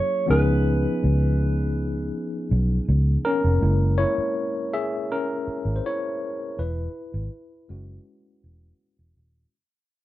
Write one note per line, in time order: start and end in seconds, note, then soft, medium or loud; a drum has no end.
0.00 0.24 F#3 medium
0.00 0.24 A#3 medium
0.00 0.25 C#4 medium
0.00 0.26 E4 medium
0.00 0.26 G#4 medium
0.00 0.26 C#5 loud
0.26 0.85 C#2 loud
0.26 3.19 F3 medium
0.26 3.20 B3 medium
0.26 3.20 C#4 medium
0.26 3.21 D#4 medium
0.30 3.21 G#4 medium
0.30 2.84 B4 medium
1.04 2.10 C#2 medium
2.51 2.79 B1 medium
2.89 3.16 C#2 medium
3.25 3.95 C#4 medium
3.25 4.01 A#4 medium
3.44 3.58 F1 medium
3.61 4.04 F#1 loud
3.61 6.53 G#3 medium
3.61 6.53 A#3 soft
3.61 3.98 E4 medium
3.98 4.69 E4 medium
3.98 4.74 C#5 loud
4.18 muted fingered electric bass stroke soft
4.73 5.07 G#4 medium
4.73 5.11 E5 loud
5.12 5.73 C#4 medium
5.12 5.79 A#4 loud
5.47 muted fingered electric bass stroke soft
5.65 5.79 G#1 medium
5.76 5.83 C5 medium
5.86 6.55 E4 medium
5.86 6.61 C#5 loud
6.59 6.86 E1 loud
6.59 8.76 E4 medium
6.59 8.76 B4 medium
7.14 7.27 G#1 medium
7.69 7.97 F#1 medium
7.69 8.18 G#3 medium
7.69 8.18 C#4 medium
7.69 8.19 F#4 medium
8.44 8.71 E1 medium
8.99 9.12 E1 medium
9.17 9.45 D#1 medium